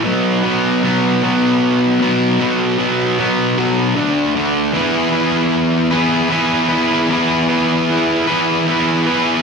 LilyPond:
\new Staff \with { instrumentName = "Distorted electric guitar" } { \time 6/8 \key e \major \tempo 4. = 51 <b, fis b>8 <b, fis b>8 <b, fis b>8 <b, fis b>4 <b, fis b>8 | <b, fis b>8 <b, fis b>8 <b, fis b>8 <b, fis b>8 <d a d'>8 <d a d'>8 | <e b e' gis' b'>8 <e' gis' b'>4 <e b e' gis' b'>8 <b e' gis' b'>8 <e' gis' b'>8 | <e b e' gis' b'>8 <e' gis' b'>4 <e b e' gis' b'>8 <b e' gis' b'>8 <e' gis' b'>8 | }